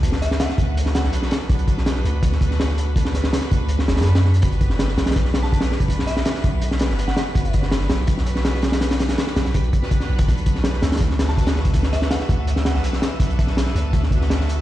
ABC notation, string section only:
X:1
M:4/4
L:1/16
Q:1/4=164
K:Bm
V:1 name="String section"
[B,DFAB]8- [B,DFAB]2 [B,DFAB]6 | [B,DFAB]8- [B,DFAB]2 [B,DFAB]6 | [B,DFAB]8- [B,DFAB]2 [B,DFAB]6 | [B,DFGB]8- [B,DFGB]2 [B,DFGB]6 |
[B,DFGB]8- [B,DFGB]2 [B,DFGB]6 | [B,DFGB]8- [B,DFGB]2 [B,DFGB]6 | [B,DFGB]8- [B,DFGB]2 z [B,DFGB]2 [B,DFGB]3 | [B,DFAB]8- [B,DFAB]2 [B,DFAB]6 |
[B,DFAB]8- [B,DFAB]2 [B,DFAB]6 | [B,DFAB]8- [B,DFAB]2 [B,DFAB]6 |]